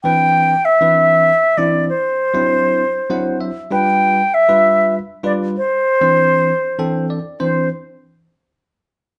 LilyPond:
<<
  \new Staff \with { instrumentName = "Flute" } { \time 6/8 \key c \major \tempo 4. = 65 g''4 e''4. d''8 | c''2~ c''8 r8 | g''4 e''4 r8 d''8 | c''2~ c''8 r8 |
c''8 r2 r8 | }
  \new Staff \with { instrumentName = "Tine electric piano" } { \time 6/8 \key c \major << { r2. | r2 fis''8 e''8 | r2. | r2 g''8 d''8 |
r2. | } \\ { <e c' d' b'>8. r8 <e c' d' b'>8. r8 <e c' d' e'>8 | r8. <fis c' d' e' c''>8. r8 <fis c' d' e' c''>8. r16 | <g d' f' b'>8. r8 <g d' f' b'>8. r8 <g d' f' b'>8 | r8. <e c' d' c''>8. r8 <e c' d' a'>8. r16 |
<e c' d' c''>8 r2 r8 | } >> }
>>